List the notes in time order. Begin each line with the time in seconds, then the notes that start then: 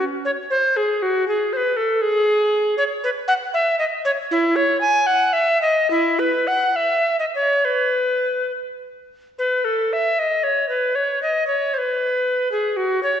0.25 C#5
0.50 C5
0.77 G#4
1.02 F#4
1.28 G#4
1.53 B4 C5
1.77 A4
2.02 G#4
2.78 C#5
3.04 B4
3.28 F#5
3.54 E5
3.79 D#5
4.05 C#5
4.31 E4
4.56 C#5
4.81 G#5
5.07 F#5
5.33 E5
5.62 D#5
5.91 E4
6.19 B4
6.47 F#5
6.76 E5
7.19 D#5
7.35 C#5
7.65 B4
9.39 B4
9.65 A4
9.93 E5
10.19 D#5
10.44 C#5
10.69 B4
10.95 C#5
11.22 D#5
11.47 C#5
11.74 C5
11.78 B4
12.52 G#4
12.77 F#4
13.03 C#5